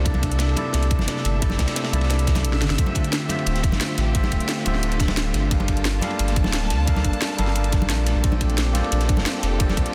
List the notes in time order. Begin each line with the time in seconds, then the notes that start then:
Already playing: C2 A3 C4 D4 A4
0.04 C3 A#3 D4 E4 A4 D5 E5, kick, closed hi-hat, ride
0.14 ride, high conga
0.23 D4, kick, closed hi-hat, ride
0.32 closed hi-hat
0.39 D4, snare, closed hi-hat, ride
0.49 ride
0.55 C3 E4 A4 D5, closed hi-hat, ride, high conga
0.73 C2 A3, snare, closed hi-hat, ride
0.83 closed hi-hat, ride
0.91 kick, closed hi-hat, ride
0.99 G1, snare, high conga
1.08 D4, snare, closed hi-hat, ride
1.17 snare
1.25 G1 A3, closed hi-hat, ride
1.40 C3 E4 A4 D5, kick, closed hi-hat, ride
1.50 snare, high conga
1.59 C2 C4, kick, snare, closed hi-hat, ride
1.67 snare, closed hi-hat, ride
1.76 C4, snare, closed hi-hat, ride
1.84 snare, ride
1.91 C2 C3 A#3 E4 A4 D5, closed hi-hat, ride, high conga
2.01 snare, ride
2.10 D4, snare, closed hi-hat, ride
2.19 closed hi-hat, ride
2.27 A4, kick, snare, closed hi-hat, ride
2.35 snare, closed hi-hat, ride, high conga
2.44 A#1 A4, closed hi-hat
2.53 snare
2.61 G1 D3, snare, closed hi-hat, ride
2.70 G1, snare, closed hi-hat
2.77 D3 A3 C4 D4 F4 G4 C5 E5, kick, closed hi-hat, ride
2.86 ride, high conga
2.95 D4, kick, closed hi-hat, ride
3.04 closed hi-hat
3.12 D4, snare, closed hi-hat, ride
3.22 ride
3.28 D3 A3 F4 G4 C5 E5, snare, closed hi-hat, ride, high conga
3.39 ride
3.46 D1 D4, closed hi-hat, ride
3.55 snare, closed hi-hat
3.63 kick, closed hi-hat, ride
3.72 A1, snare, high conga
3.81 D4, snare, closed hi-hat, ride
3.89 snare
3.98 A1 A3, snare, closed hi-hat, ride
4.13 D3 A3 F4 G4 C5 E5, kick, closed hi-hat, ride
4.23 snare, high conga
4.32 D1 C4, kick, closed hi-hat, ride
4.40 closed hi-hat
4.48 C4, snare, closed hi-hat, ride
4.57 snare
4.64 D1 D3 A3 F4 G4 C5 E5, closed hi-hat, ride, high conga
4.75 snare
4.83 D4, closed hi-hat, ride
4.92 closed hi-hat, ride
4.99 D4, kick, snare, closed hi-hat, ride
5.08 snare, ride, high conga
5.17 D4, snare, closed hi-hat, ride
5.34 G1, snare, closed hi-hat, ride
5.49 G3 A#3 D4 G4 A4 A#4 F5 A5, kick, closed hi-hat, ride
5.60 ride, high conga
5.68 kick, closed hi-hat, ride
5.77 closed hi-hat
5.85 D4, snare, closed hi-hat, ride
5.94 ride
6.00 G3 A3 G4 A4 F5, snare, closed hi-hat, ride, high conga
6.10 ride
6.19 G1, closed hi-hat, ride
6.28 snare, closed hi-hat
6.36 C4, kick, closed hi-hat, ride
6.44 D1, snare, high conga
6.53 C4, snare, closed hi-hat, ride
6.62 snare
6.70 D2, snare, closed hi-hat, ride
6.86 G3 D4 G4 A4 A#4 F5, kick, closed hi-hat, ride
6.96 snare, high conga
7.04 G1 D4, kick, closed hi-hat
7.13 closed hi-hat
7.21 D4, snare, closed hi-hat, ride
7.30 snare
7.37 G1 G3 G4 A4 A#4 F5, closed hi-hat, ride, high conga
7.47 snare
7.55 D4, closed hi-hat, ride
7.64 closed hi-hat, ride
7.72 kick, snare, closed hi-hat, ride
7.82 high conga
7.90 A#1 D4, snare, closed hi-hat, ride
8.06 A3, snare, closed hi-hat, ride
8.15 A#1
8.22 A#3 C4 F4 G4 A4 C5 D5, kick, closed hi-hat, ride
8.32 ride, high conga
8.41 C4, kick, closed hi-hat, ride
8.50 closed hi-hat
8.58 C4, snare, closed hi-hat, ride
8.66 ride
8.73 A#3 F4 G4 A4 C5 D5, snare, closed hi-hat, ride, high conga
8.84 ride
8.92 A#1 D4, closed hi-hat, ride
9.00 snare, closed hi-hat
9.09 D4, kick, closed hi-hat, ride
9.17 F1, snare, high conga
9.26 snare, closed hi-hat, ride
9.35 snare
9.43 F1, snare, closed hi-hat, ride
9.58 A#3 D4 F4 G4 A4 C5 D5, kick, closed hi-hat, ride
9.69 snare, high conga
9.77 A#1, kick, closed hi-hat, ride
9.86 closed hi-hat